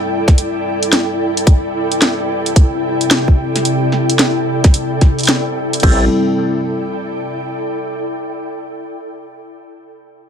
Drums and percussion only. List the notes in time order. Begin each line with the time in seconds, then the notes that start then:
0.28 kick, snare, closed hi-hat
0.38 closed hi-hat
0.83 closed hi-hat
0.93 snare, closed hi-hat
1.37 closed hi-hat
1.47 kick, closed hi-hat
1.92 closed hi-hat
2.02 snare, closed hi-hat
2.46 closed hi-hat
2.56 kick, closed hi-hat
3.01 closed hi-hat
3.11 snare, closed hi-hat
3.28 kick
3.56 snare, closed hi-hat
3.65 closed hi-hat
3.92 snare
4.10 closed hi-hat
4.19 snare, closed hi-hat
4.64 kick, snare, closed hi-hat
4.74 closed hi-hat
5.01 kick, snare, closed hi-hat
5.19 closed hi-hat
5.21 closed hi-hat
5.23 closed hi-hat
5.25 closed hi-hat
5.27 snare, closed hi-hat
5.73 closed hi-hat
5.80 kick, closed hi-hat
5.83 closed hi-hat, crash
5.89 closed hi-hat
5.92 closed hi-hat